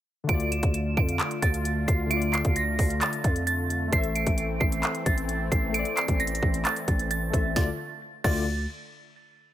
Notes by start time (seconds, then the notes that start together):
0.24 D3 A3
0.29 D2 D3 A3 F4 D7, kick, closed hi-hat
0.34 D5
0.40 closed hi-hat
0.52 E7, closed hi-hat
0.63 D2, kick, closed hi-hat
0.74 closed hi-hat
0.97 F2 D7, kick
1.09 closed hi-hat
1.19 clap, closed hi-hat
1.31 closed hi-hat
1.42 D2 A6, kick, closed hi-hat
1.54 closed hi-hat
1.65 closed hi-hat
1.88 D2 C7, kick, closed hi-hat
2.06 D3 A3
2.11 F4 D7, closed hi-hat
2.16 D5
2.22 closed hi-hat
2.33 C7, clap, closed hi-hat
2.45 D2, kick, closed hi-hat
2.56 A#6, closed hi-hat
2.79 D2, kick, open hi-hat
2.90 closed hi-hat
3.01 A6, clap, closed hi-hat
3.13 closed hi-hat
3.24 F2, kick, closed hi-hat
3.36 closed hi-hat
3.47 A6, closed hi-hat
3.70 closed hi-hat
3.88 A3 A4
3.93 A1 E3 C4 C5 C7, kick, closed hi-hat
3.98 E5
4.04 closed hi-hat
4.16 D7, closed hi-hat
4.27 A1, kick, closed hi-hat
4.38 closed hi-hat
4.60 A1 C7, kick
4.72 closed hi-hat
4.83 clap, closed hi-hat
4.95 closed hi-hat
5.06 A1 A6, kick, closed hi-hat
5.18 closed hi-hat
5.29 closed hi-hat
5.52 A1 C7, kick, closed hi-hat
5.69 A3 A4
5.74 C5 D7, closed hi-hat
5.79 D5
5.85 closed hi-hat
5.97 C7, clap, closed hi-hat
6.08 A1, kick, closed hi-hat
6.20 A#6, closed hi-hat
6.27 closed hi-hat
6.35 closed hi-hat
6.43 A1, kick
6.54 closed hi-hat
6.65 A6, clap, closed hi-hat
6.76 closed hi-hat
6.88 A1, kick, closed hi-hat
6.99 closed hi-hat
7.11 A6, closed hi-hat
7.30 A1 A3 A4 C5, kick, closed hi-hat
7.35 E5
7.56 D2 D3 A3 F4 D5 A6, kick, snare
8.24 D2 D3 A3 F4 D5 A6, kick, crash